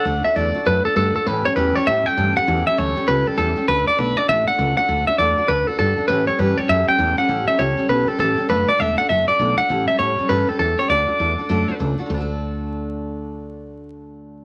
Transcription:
X:1
M:4/4
L:1/8
Q:"Swing" 1/4=200
K:D
V:1 name="Clean electric guitar"
f e d2 B A A A | B c B c e g2 f- | f e c2 B A A2 | B d B d e f2 f- |
f e d2 B A A2 | B c B c e g2 f- | f e c2 B A A2 | B d e f e d2 f- |
f e c2 B A A c | d6 z2 | z8 | z8 |]
V:2 name="Steel-string acoustic guitar"
[D,A,DFA] [DFA] [D,A,DFA] [DFA] [A,DFA] [DFA] [D,A,DFA] [DFA] | [A,,E,G,CGA] [G,CG] [A,,E,G,CGA] [G,CGA] [G,CGA] [G,CGA] [A,,E,G,CGA] [G,CGA] | [A,,E,G,CGA] [G,CGA] [A,,E,G,CGA] [G,CGA] [G,CGA] [G,CGA] [A,,E,G,CGA] [G,CGA] | [D,A,DFA] [DFA] [D,A,DFA] [DFA] [A,DFA] [DFA] [D,A,DFA] [DFA] |
[D,A,DFA] [DFA] [D,A,DFA] [DFA] [A,DFA] [DFA] [D,A,DFA] [DFA] | [A,,E,G,CGA] [G,CGA] [A,,E,G,CGA] [G,CGA] [G,CGA] [G,CGA] [A,,E,G,CGA] [G,CGA] | [A,,E,G,CGA] [G,CGA] [A,,E,G,CGA] [G,CGA] [G,CGA] [G,CGA] [A,,E,G,CGA] [G,CGA] | [D,A,DFA] [DFA] [D,A,DFA] [DFA] [A,DFA] [DFA] [D,A,DFA] [DFA] |
[A,,E,G,CGA] [G,CGA] [G,CGA] [G,CGA] [A,,E,G,CGA] [G,CGA] [G,CGA] [G,CGA] | [D,A,DFA] [DFA] [A,DFA] [DFA] [D,A,DFA] [DFA] [A,DFA] [DFA] | [D,A,DFA]8- | [D,A,DFA]8 |]
V:3 name="Fretless electric bass" clef=bass
D,, z E,, z F,, z G,, z | A,, z E,, z A,, z G,, z | E,, z D,, z C,, z E,, z | D,, z B,,, z A,,, z C,, z |
D,, z E,, z D,, z G,, z | A,, z G,, z F,, z E,, z | A,,, z C,, z B,,, z A,,, z | F,,, z E,,, z F,,, z B,,, z |
A,,, z A,, z G,, z E,, z | D,, z E,, z F,, z C,, z | D,,8- | D,,8 |]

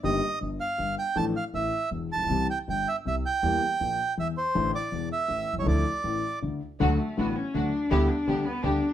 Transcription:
X:1
M:3/4
L:1/16
Q:1/4=161
K:Dm
V:1 name="Bandoneon"
_e4 z2 f4 g2 | a2 f2 e4 z2 a2- | a2 g2 g2 e2 e2 g2- | g8 e2 c2- |
c2 d4 e4- e ^c | d8 z4 | [K:D] z12 | z12 |]
V:2 name="String section"
z12 | z12 | z12 | z12 |
z12 | z12 | [K:D] [A,DF]2 z2 [A,DF]2 z2 [A,DF]2 z2 | [B,DG]2 z2 [B,DG]2 z2 [B,DG]2 z2 |]
V:3 name="Cello"
z12 | z12 | z12 | z12 |
z12 | z12 | [K:D] A,4 B,2 C2 D4 | E2 D4 B,2 D3 z |]
V:4 name="Grand piano" clef=bass
[G,,,G,,_E,G,B,G]2 z2 [G,,,G,,]2 z2 [G,,,G,,]2 z2 | [A,,,A,,F,A,DA]2 z2 [A,,,A,,]2 z2 [E,,,E,,]2 z/2 A,,,/2 B,,,/2 =B,,,/2 | [C,,C,E,G,CG]2 z2 [G,,,G,,]2 z2 [C,,C,]2 z2 | [E,,E,G,B,G]2 z2 [B,,,B,,]2 z2 [E,,E,]2 z2 |
[A,,,A,,D,E,A,E]2 z2 [E,,,E,,]2 z2 [A,,,A,,]2 z/2 =B,,,/2 C,,/2 ^C,,/2 | [D,,D,F,A,E]2 z2 [A,,,A,,]2 z2 [D,,D,]2 z2 | [K:D] [D,,D,F,A,F]2 z2 [A,,,A,,D,F,A,F]2 z2 [D,,D,F,A,F]2 z2 | [D,,D,G,B,G]2 z2 [D,,D,G,B,G]2 z2 [D,,D,G,B,G]2 z2 |]
V:5 name="Upright bass" clef=bass
G,,,3/2 z2 z/2 G,,,3/2 z2 z/2 G,,,3/2 z2 z/2 | A,,,3/2 z2 z/2 A,,,3/2 z2 z/2 E,,,3/2 z A,,,/2 B,,,/2 =B,,,/2 | C,,3/2 z2 z/2 G,,,3/2 z2 z/2 C,,3/2 z2 z/2 | E,,3/2 z2 z/2 B,,,3/2 z2 z/2 E,,3/2 z2 z/2 |
A,,,3/2 z2 z/2 E,,,3/2 z2 z/2 A,,,3/2 z =B,,,/2 C,,/2 ^C,,/2 | D,,3/2 z2 z/2 A,,,3/2 z2 z/2 D,,3/2 z2 z/2 | [K:D] D,,3/2 z2 z/2 A,,,3/2 z2 z/2 D,,3/2 z2 z/2 | D,,3/2 z2 z/2 D,,3/2 z2 z/2 D,,3/2 z2 z/2 |]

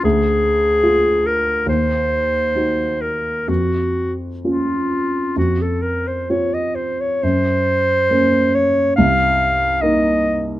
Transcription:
X:1
M:4/4
L:1/16
Q:1/4=68
K:Db
V:1 name="Clarinet"
A6 B2 c6 B2 | G3 z F4 G =A B c d e c d | c6 d2 f4 e4 |]
V:2 name="Grand piano"
=D,,4 F4 E,,4 [EG]4 | F,,4 [DF]4 F,,4 [CF]4 | G,,4 [B,D]4 C,,4 [B,E]4 |]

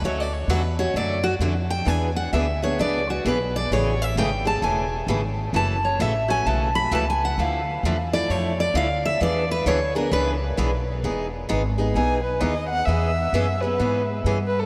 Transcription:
X:1
M:4/4
L:1/16
Q:"Swing" 1/4=131
K:Emix
V:1 name="Steel-string acoustic guitar"
(3c2 d2 c2 B2 c2 d2 F2 z2 =g2 | g2 f2 e2 c2 d2 F2 B2 d2 | c2 e2 =g2 a2 ^g4 z4 | a2 c2 e2 g2 a2 b2 (3a2 g2 f2 |
=f6 d2 c2 d2 f2 e2 | d2 B2 c2 _B2 =B2 z6 | [K:E] z16 | z16 |]
V:2 name="Violin"
z16 | z16 | z16 | z16 |
z16 | z16 | [K:E] z8 g2 B2 d2 f2 | e6 B6 z2 B A |]
V:3 name="Steel-string acoustic guitar"
[D,F,A,CF]2 z2 [D,F,A,CF]2 [A,CF]2 [D,F,A,CF]2 z2 [D,F,A,CF]2 z2 | [E,B,DG]2 z2 [E,B,DG]2 [B,DG]2 [E,B,DG]2 z2 [E,B,DG]2 z2 | [C,E,A,CG]2 z2 [C,E,A,CG]2 [A,CG]2 [C,E,A,CG]2 z2 [C,E,A,CG]2 z2 | [C,E,A,CF]2 z2 [C,E,A,CF]2 [A,CF]2 [C,E,A,CF]2 z2 [C,E,A,CF]2 z2 |
[D,=F,A,E]2 z2 [D,F,A,E]2 [F,A,E]2 [D,F,A,E]2 z2 [D,F,A,E]2 z2 | [E,B,DG]2 z2 [E,B,DG]2 [B,DG]2 [E,B,DG]2 z2 [E,B,DG]2 z2 | [K:E] [E,B,DG]2 z2 [E,B,DG]2 [B,DG]2 [E,B,DG]2 z2 [E,B,DG]2 z2 | [E,B,CG]2 z2 [E,B,CG]2 [B,CG]2 [E,B,CG]2 z2 [E,B,CG]2 z2 |]
V:4 name="Upright bass" clef=bass
D,,4 E,,4 F,,4 =F,,4 | E,,4 D,,4 C,,4 B,,,4 | A,,,4 G,,,4 E,,,4 G,,,4 | F,,,4 A,,,4 B,,,4 C,,4 |
D,,4 E,,4 =F,,4 D,,4 | E,,4 D,,4 C,,4 B,,,4 | [K:E] E,,,4 G,,,4 B,,,4 D,,4 | E,,4 F,,4 G,,4 =G,,4 |]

